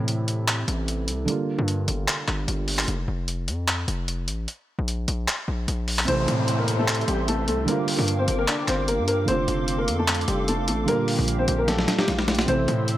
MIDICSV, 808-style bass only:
0, 0, Header, 1, 2, 480
1, 0, Start_track
1, 0, Tempo, 400000
1, 1535, Time_signature, 4, 2, 24, 8
1, 15571, End_track
2, 0, Start_track
2, 0, Title_t, "808-style bass"
2, 0, Program_c, 0, 38
2, 0, Note_on_c, 0, 45, 106
2, 777, Note_off_c, 0, 45, 0
2, 815, Note_on_c, 0, 33, 109
2, 1295, Note_on_c, 0, 36, 100
2, 1313, Note_off_c, 0, 33, 0
2, 1523, Note_off_c, 0, 36, 0
2, 1902, Note_on_c, 0, 43, 101
2, 2241, Note_off_c, 0, 43, 0
2, 2255, Note_on_c, 0, 31, 107
2, 2486, Note_off_c, 0, 31, 0
2, 2736, Note_on_c, 0, 31, 108
2, 2966, Note_off_c, 0, 31, 0
2, 2975, Note_on_c, 0, 31, 109
2, 3436, Note_off_c, 0, 31, 0
2, 3455, Note_on_c, 0, 29, 110
2, 3686, Note_off_c, 0, 29, 0
2, 3695, Note_on_c, 0, 29, 109
2, 4176, Note_on_c, 0, 41, 102
2, 4194, Note_off_c, 0, 29, 0
2, 4632, Note_off_c, 0, 41, 0
2, 4655, Note_on_c, 0, 29, 109
2, 5136, Note_on_c, 0, 33, 98
2, 5154, Note_off_c, 0, 29, 0
2, 5364, Note_off_c, 0, 33, 0
2, 5743, Note_on_c, 0, 34, 100
2, 6081, Note_off_c, 0, 34, 0
2, 6096, Note_on_c, 0, 34, 104
2, 6326, Note_off_c, 0, 34, 0
2, 6576, Note_on_c, 0, 34, 104
2, 6806, Note_off_c, 0, 34, 0
2, 6816, Note_on_c, 0, 34, 108
2, 7277, Note_off_c, 0, 34, 0
2, 7296, Note_on_c, 0, 33, 113
2, 7526, Note_off_c, 0, 33, 0
2, 7535, Note_on_c, 0, 45, 105
2, 8457, Note_off_c, 0, 45, 0
2, 8495, Note_on_c, 0, 33, 109
2, 8975, Note_on_c, 0, 36, 105
2, 8993, Note_off_c, 0, 33, 0
2, 9203, Note_off_c, 0, 36, 0
2, 9582, Note_on_c, 0, 43, 100
2, 9921, Note_off_c, 0, 43, 0
2, 9935, Note_on_c, 0, 31, 109
2, 10166, Note_off_c, 0, 31, 0
2, 10415, Note_on_c, 0, 31, 110
2, 10783, Note_on_c, 0, 43, 105
2, 10801, Note_off_c, 0, 31, 0
2, 11118, Note_off_c, 0, 43, 0
2, 11135, Note_on_c, 0, 29, 112
2, 11366, Note_off_c, 0, 29, 0
2, 11375, Note_on_c, 0, 29, 106
2, 11856, Note_on_c, 0, 41, 102
2, 11874, Note_off_c, 0, 29, 0
2, 12312, Note_off_c, 0, 41, 0
2, 12336, Note_on_c, 0, 29, 111
2, 12816, Note_on_c, 0, 33, 102
2, 12834, Note_off_c, 0, 29, 0
2, 13044, Note_off_c, 0, 33, 0
2, 13423, Note_on_c, 0, 34, 103
2, 13761, Note_off_c, 0, 34, 0
2, 13776, Note_on_c, 0, 34, 110
2, 14236, Note_off_c, 0, 34, 0
2, 14496, Note_on_c, 0, 34, 103
2, 14957, Note_off_c, 0, 34, 0
2, 14976, Note_on_c, 0, 33, 112
2, 15206, Note_off_c, 0, 33, 0
2, 15216, Note_on_c, 0, 45, 102
2, 15571, Note_off_c, 0, 45, 0
2, 15571, End_track
0, 0, End_of_file